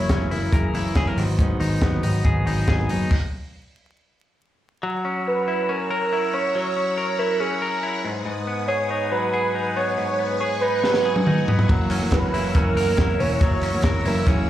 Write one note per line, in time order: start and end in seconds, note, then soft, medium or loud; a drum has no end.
0.00 1.42 F#3 medium
0.00 0.11 E4 medium
0.00 0.30 E4 medium
0.00 0.52 A#4 medium
0.00 0.32 C#5 loud
0.09 0.27 F#1 medium
0.09 0.29 C#3 medium
0.09 0.30 E3 medium
0.09 0.31 A#3 medium
0.09 1.21 C#4 medium
0.09 0.33 E4 medium
0.09 kick loud
0.09 snare loud
0.09 closed hi-hat medium
0.30 0.48 F#1 medium
0.30 0.72 C#3 medium
0.30 0.73 E3 medium
0.30 0.74 A#3 medium
0.30 0.74 E4 medium
0.30 0.75 E4 medium
0.30 0.54 A#4 medium
0.30 open hi-hat medium
0.52 0.70 F#1 loud
0.52 1.17 G#4 medium
0.52 0.96 A#4 medium
0.52 kick loud
0.52 closed hi-hat medium
0.73 0.92 F#1 loud
0.73 0.94 C#3 medium
0.73 0.95 E3 medium
0.73 0.96 A#3 medium
0.73 1.22 E4 medium
0.73 0.97 E4 medium
0.73 open hi-hat medium
0.95 1.13 F#1 loud
0.95 1.17 C#3 medium
0.95 1.18 E3 medium
0.95 1.18 A#3 medium
0.95 1.19 E4 medium
0.95 1.07 G#4 medium
0.95 kick loud
0.95 snare medium
0.95 closed hi-hat medium
1.07 1.22 A#4 medium
1.16 1.52 G#1 medium
1.16 1.38 G#2 medium
1.16 1.38 D#3 medium
1.16 1.39 F#3 medium
1.16 1.40 B3 medium
1.16 1.40 D#4 medium
1.16 open hi-hat medium
1.39 1.82 G#2 medium
1.39 3.11 G#2 medium
1.39 1.81 D#3 medium
1.39 1.83 F#3 medium
1.39 1.83 B3 loud
1.39 1.83 D#4 medium
1.39 kick loud
1.39 closed hi-hat medium
1.60 1.77 G#1 loud
1.60 2.02 D#4 medium
1.60 open hi-hat medium
1.81 1.99 G#1 loud
1.81 2.02 D#3 medium
1.81 2.03 F#3 medium
1.81 3.15 B3 medium
1.81 2.04 B3 medium
1.81 2.05 D#4 medium
1.81 kick loud
1.81 snare loud
1.81 closed hi-hat medium
2.03 2.21 G#1 medium
2.03 2.45 D#3 medium
2.03 2.47 F#3 medium
2.03 2.47 B3 medium
2.03 2.45 D#4 medium
2.03 2.48 D#4 medium
2.03 open hi-hat medium
2.24 2.42 G#1 loud
2.24 2.67 G#4 medium
2.24 kick loud
2.24 closed hi-hat medium
2.45 2.63 G#1 medium
2.45 2.66 D#3 medium
2.45 2.67 F#3 medium
2.45 2.69 B3 medium
2.45 2.89 D#4 medium
2.45 open hi-hat medium
2.50 2.69 D#4 medium
2.67 2.85 G#1 medium
2.67 2.88 D#3 medium
2.67 2.89 F#3 medium
2.67 2.90 B3 medium
2.67 2.91 D#4 medium
2.67 3.15 G#4 medium
2.67 kick loud
2.67 snare medium
2.67 closed hi-hat medium
2.89 3.07 F#1 medium
2.89 3.11 D#3 medium
2.89 3.11 F#3 medium
2.89 3.12 B3 medium
2.89 3.16 D#4 medium
2.89 3.12 D#4 medium
2.89 open hi-hat medium
3.11 kick loud
3.11 crash medium
4.82 6.55 F#3 medium
4.82 8.01 C#5 medium
4.82 14.50 F#5 medium
4.82 8.01 A#5 medium
4.82 8.01 E6 medium
5.05 5.68 C#4 medium
5.27 5.71 B4 loud
5.48 6.11 E4 medium
5.69 6.32 C#4 medium
5.69 6.35 A#4 loud
5.90 6.96 A#4 medium
6.13 7.18 E4 medium
6.34 6.75 C#4 medium
6.34 6.55 C#5 loud
6.55 8.29 F#3 medium
6.55 7.20 C#5 loud
6.77 7.39 C#4 medium
6.97 7.61 A#4 medium
7.19 7.82 E4 medium
7.19 7.41 A#4 loud
7.40 8.09 C#4 medium
7.40 8.05 G#4 medium
7.62 8.09 A#4 medium
7.83 8.09 E4 medium
8.05 8.24 G#2 medium
8.05 11.66 B4 medium
8.05 11.66 G#5 medium
8.05 9.75 D#6 medium
8.26 9.97 G#2 medium
8.47 9.75 B3 medium
8.67 9.32 G#4 medium
8.67 9.08 C#5 loud
8.90 9.54 D#4 medium
9.11 10.83 F#3 medium
9.11 9.72 B4 loud
9.33 10.39 G#4 medium
9.55 10.61 D#4 medium
9.76 10.17 B3 medium
9.76 9.96 C#5 loud
9.76 11.68 C#6 medium
9.97 11.69 G#2 medium
9.97 10.38 C#5 loud
10.19 11.48 B3 medium
10.40 11.04 G#4 medium
10.40 10.50 C#5 loud
10.61 11.26 D#4 medium
10.61 11.43 B4 loud
10.84 11.69 F#3 medium
10.84 snare medium
10.94 snare medium
11.05 11.74 G#4 medium
11.16 high tom medium
11.27 11.74 D#4 medium
11.27 mid tom medium
11.48 11.74 B3 medium
11.48 floor tom loud
11.59 floor tom medium
11.69 12.05 F#1 loud
11.69 12.01 C#3 medium
11.69 12.02 E3 medium
11.69 13.41 F#3 medium
11.69 12.01 A#3 medium
11.69 12.00 E4 medium
11.69 14.50 C#5 medium
11.69 14.50 A#5 medium
11.69 14.50 E6 medium
11.69 kick loud
11.69 ride medium
11.91 12.54 C#4 medium
11.91 clap medium
11.91 open hi-hat medium
12.01 12.32 F#2 medium
12.01 12.33 C#3 medium
12.01 12.34 E3 medium
12.01 12.34 A#3 medium
12.01 12.34 E4 medium
12.12 12.29 F#1 loud
12.12 12.52 B4 loud
12.12 kick loud
12.12 snare loud
12.12 clap medium
12.12 hi-hat pedal medium
12.12 ride medium
12.33 12.51 F#1 medium
12.33 12.54 F#2 medium
12.33 12.55 C#3 medium
12.33 12.55 E3 medium
12.33 12.56 A#3 medium
12.33 12.97 E4 medium
12.33 12.56 E4 medium
12.33 open hi-hat medium
12.55 12.73 F#1 loud
12.55 12.87 F#2 medium
12.55 12.88 C#3 medium
12.55 12.87 E3 medium
12.55 12.87 A#3 medium
12.55 13.18 C#4 medium
12.55 12.86 E4 medium
12.55 13.22 A#4 loud
12.55 kick loud
12.55 hi-hat pedal medium
12.55 ride medium
12.75 12.93 F#1 loud
12.75 13.83 A#4 medium
12.75 open hi-hat medium
12.87 13.21 F#2 medium
12.87 13.17 C#3 medium
12.87 13.18 E3 medium
12.87 13.20 A#3 medium
12.87 13.20 E4 medium
12.98 13.16 F#1 loud
12.98 14.04 E4 medium
12.98 kick loud
12.98 snare medium
12.98 clap medium
12.98 ride soft
13.19 13.37 E1 medium
13.19 13.39 C#3 medium
13.19 13.40 E3 medium
13.19 13.42 A#3 medium
13.19 13.62 C#4 medium
13.19 13.42 E4 medium
13.19 13.41 C#5 loud
13.19 open hi-hat medium
13.40 13.76 F#1 loud
13.40 13.73 C#3 medium
13.40 13.73 E3 medium
13.40 14.50 F#3 medium
13.40 13.73 A#3 medium
13.40 13.72 E4 medium
13.40 14.08 C#5 loud
13.40 kick loud
13.40 hi-hat pedal medium
13.40 ride medium
13.63 14.26 C#4 medium
13.63 clap medium
13.63 open hi-hat medium
13.73 14.04 F#2 medium
13.73 14.04 C#3 medium
13.73 14.05 E3 medium
13.73 14.06 A#3 medium
13.73 14.05 E4 medium
13.83 14.01 F#1 loud
13.83 14.48 A#4 medium
13.83 kick loud
13.83 snare loud
13.83 clap loud
13.83 hi-hat pedal medium
13.83 ride medium
14.04 14.22 F#1 loud
14.04 14.25 F#2 medium
14.04 14.26 C#3 medium
14.04 14.27 E3 medium
14.04 14.28 A#3 medium
14.04 14.50 E4 medium
14.04 14.28 E4 medium
14.04 14.19 A#4 loud
14.04 open hi-hat medium
14.19 14.29 A#4 medium
14.27 14.44 F#1 loud
14.27 14.50 F#2 medium
14.27 14.50 C#3 medium
14.27 14.50 E3 medium
14.27 14.50 A#3 loud
14.27 14.50 C#4 medium
14.27 14.50 E4 loud
14.27 14.50 G#4 medium
14.27 kick loud
14.27 hi-hat pedal medium
14.27 ride medium